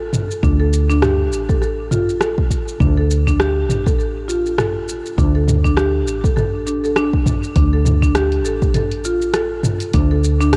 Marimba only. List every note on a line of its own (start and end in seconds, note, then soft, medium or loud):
0.43 0.58 D4 medium
0.60 0.88 A4 medium
0.89 0.97 D4 medium
1.02 1.47 G4 medium
1.49 1.60 A4 medium
1.62 1.90 A4 medium
1.91 2.08 F4 medium
2.21 2.37 A4 medium
2.80 2.96 D4 medium
2.97 3.26 A4 medium
3.27 3.34 D4 medium
3.40 3.85 G4 loud
3.86 3.97 A4 medium
3.99 4.28 A4 medium
4.28 4.45 F4 medium
4.58 4.75 A4 medium
5.18 5.33 D4 medium
5.35 5.63 A4 medium
5.64 5.72 D4 loud
5.77 6.22 G4 loud
6.24 6.35 A4 medium
6.36 6.52 A4 medium
6.67 6.83 D4 medium
6.84 6.96 A4 medium
6.97 7.12 D4 loud
7.56 7.71 D4 medium
7.73 8.01 A4 medium
8.02 8.10 D4 medium
8.15 8.44 G4 medium
8.45 8.61 A4 medium
8.75 9.03 A4 medium
9.05 9.21 F4 medium
9.34 9.50 A4 medium
9.94 10.09 D4 medium
10.11 10.39 A4 medium
10.40 10.48 D4 loud
10.53 10.57 G4 loud